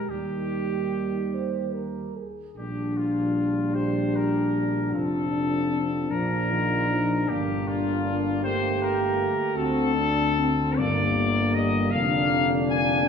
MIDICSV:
0, 0, Header, 1, 6, 480
1, 0, Start_track
1, 0, Key_signature, -2, "major"
1, 0, Tempo, 825309
1, 57, Time_signature, 6, 3, 24, 8
1, 1497, Tempo, 791557
1, 2457, Tempo, 785340
1, 4377, Tempo, 753769
1, 5817, Tempo, 806452
1, 6777, Tempo, 756620
1, 7990, End_track
2, 0, Start_track
2, 0, Title_t, "Trumpet section"
2, 0, Program_c, 0, 61
2, 54, Note_on_c, 0, 67, 63
2, 1258, Note_off_c, 0, 67, 0
2, 1493, Note_on_c, 0, 67, 71
2, 1718, Note_off_c, 0, 67, 0
2, 1739, Note_on_c, 0, 65, 63
2, 2209, Note_on_c, 0, 72, 79
2, 2216, Note_off_c, 0, 65, 0
2, 2455, Note_off_c, 0, 72, 0
2, 2459, Note_on_c, 0, 70, 67
2, 2932, Note_on_c, 0, 69, 86
2, 2935, Note_off_c, 0, 70, 0
2, 3637, Note_off_c, 0, 69, 0
2, 3648, Note_on_c, 0, 70, 87
2, 4367, Note_on_c, 0, 67, 81
2, 4375, Note_off_c, 0, 70, 0
2, 4616, Note_on_c, 0, 65, 78
2, 4619, Note_off_c, 0, 67, 0
2, 5098, Note_on_c, 0, 72, 97
2, 5103, Note_off_c, 0, 65, 0
2, 5335, Note_off_c, 0, 72, 0
2, 5349, Note_on_c, 0, 70, 79
2, 5816, Note_on_c, 0, 69, 105
2, 5820, Note_off_c, 0, 70, 0
2, 6541, Note_on_c, 0, 74, 96
2, 6545, Note_off_c, 0, 69, 0
2, 7008, Note_on_c, 0, 75, 97
2, 7014, Note_off_c, 0, 74, 0
2, 7244, Note_on_c, 0, 77, 110
2, 7249, Note_off_c, 0, 75, 0
2, 7633, Note_off_c, 0, 77, 0
2, 7741, Note_on_c, 0, 80, 103
2, 7977, Note_off_c, 0, 80, 0
2, 7990, End_track
3, 0, Start_track
3, 0, Title_t, "French horn section"
3, 0, Program_c, 1, 60
3, 58, Note_on_c, 1, 67, 46
3, 716, Note_off_c, 1, 67, 0
3, 779, Note_on_c, 1, 72, 53
3, 1001, Note_off_c, 1, 72, 0
3, 1014, Note_on_c, 1, 70, 42
3, 1256, Note_on_c, 1, 68, 35
3, 1258, Note_off_c, 1, 70, 0
3, 1495, Note_off_c, 1, 68, 0
3, 1504, Note_on_c, 1, 62, 55
3, 3631, Note_off_c, 1, 62, 0
3, 3641, Note_on_c, 1, 62, 54
3, 4357, Note_off_c, 1, 62, 0
3, 4368, Note_on_c, 1, 58, 63
3, 5709, Note_off_c, 1, 58, 0
3, 5817, Note_on_c, 1, 60, 70
3, 6042, Note_on_c, 1, 62, 64
3, 6046, Note_off_c, 1, 60, 0
3, 6295, Note_off_c, 1, 62, 0
3, 6307, Note_on_c, 1, 60, 68
3, 6545, Note_off_c, 1, 60, 0
3, 6553, Note_on_c, 1, 58, 73
3, 7239, Note_off_c, 1, 58, 0
3, 7247, Note_on_c, 1, 58, 85
3, 7948, Note_off_c, 1, 58, 0
3, 7966, Note_on_c, 1, 58, 82
3, 7990, Note_off_c, 1, 58, 0
3, 7990, End_track
4, 0, Start_track
4, 0, Title_t, "Trombone section"
4, 0, Program_c, 2, 61
4, 0, Note_on_c, 2, 56, 60
4, 55, Note_on_c, 2, 55, 47
4, 59, Note_off_c, 2, 56, 0
4, 1303, Note_off_c, 2, 55, 0
4, 1492, Note_on_c, 2, 62, 66
4, 2189, Note_off_c, 2, 62, 0
4, 2206, Note_on_c, 2, 67, 70
4, 2929, Note_on_c, 2, 65, 57
4, 2930, Note_off_c, 2, 67, 0
4, 3162, Note_on_c, 2, 62, 57
4, 3168, Note_off_c, 2, 65, 0
4, 3398, Note_on_c, 2, 60, 51
4, 3405, Note_off_c, 2, 62, 0
4, 3637, Note_on_c, 2, 62, 65
4, 3647, Note_off_c, 2, 60, 0
4, 3884, Note_off_c, 2, 62, 0
4, 3890, Note_on_c, 2, 65, 67
4, 4132, Note_on_c, 2, 63, 66
4, 4135, Note_off_c, 2, 65, 0
4, 4370, Note_off_c, 2, 63, 0
4, 4370, Note_on_c, 2, 62, 74
4, 5094, Note_on_c, 2, 67, 84
4, 5103, Note_off_c, 2, 62, 0
4, 5811, Note_off_c, 2, 67, 0
4, 5811, Note_on_c, 2, 66, 74
4, 6048, Note_off_c, 2, 66, 0
4, 6050, Note_on_c, 2, 62, 68
4, 6226, Note_off_c, 2, 62, 0
4, 6301, Note_on_c, 2, 60, 74
4, 6542, Note_off_c, 2, 60, 0
4, 6549, Note_on_c, 2, 58, 80
4, 7246, Note_on_c, 2, 62, 101
4, 7255, Note_off_c, 2, 58, 0
4, 7990, Note_off_c, 2, 62, 0
4, 7990, End_track
5, 0, Start_track
5, 0, Title_t, "Euphonium"
5, 0, Program_c, 3, 58
5, 60, Note_on_c, 3, 51, 47
5, 1282, Note_off_c, 3, 51, 0
5, 1503, Note_on_c, 3, 55, 62
5, 2934, Note_on_c, 3, 53, 54
5, 2943, Note_off_c, 3, 55, 0
5, 3649, Note_off_c, 3, 53, 0
5, 3652, Note_on_c, 3, 53, 66
5, 3897, Note_on_c, 3, 51, 62
5, 3906, Note_off_c, 3, 53, 0
5, 4133, Note_on_c, 3, 53, 64
5, 4143, Note_off_c, 3, 51, 0
5, 4381, Note_on_c, 3, 55, 64
5, 4391, Note_off_c, 3, 53, 0
5, 5105, Note_off_c, 3, 55, 0
5, 5109, Note_on_c, 3, 57, 69
5, 6349, Note_off_c, 3, 57, 0
5, 6548, Note_on_c, 3, 55, 62
5, 7229, Note_off_c, 3, 55, 0
5, 7260, Note_on_c, 3, 50, 86
5, 7990, Note_off_c, 3, 50, 0
5, 7990, End_track
6, 0, Start_track
6, 0, Title_t, "Tuba"
6, 0, Program_c, 4, 58
6, 55, Note_on_c, 4, 39, 48
6, 1280, Note_off_c, 4, 39, 0
6, 1496, Note_on_c, 4, 34, 53
6, 2933, Note_on_c, 4, 29, 59
6, 2942, Note_off_c, 4, 34, 0
6, 3644, Note_off_c, 4, 29, 0
6, 3648, Note_on_c, 4, 34, 60
6, 4361, Note_off_c, 4, 34, 0
6, 4373, Note_on_c, 4, 31, 58
6, 5620, Note_off_c, 4, 31, 0
6, 5819, Note_on_c, 4, 38, 75
6, 6550, Note_on_c, 4, 31, 79
6, 6559, Note_off_c, 4, 38, 0
6, 7255, Note_off_c, 4, 31, 0
6, 7257, Note_on_c, 4, 29, 78
6, 7990, Note_off_c, 4, 29, 0
6, 7990, End_track
0, 0, End_of_file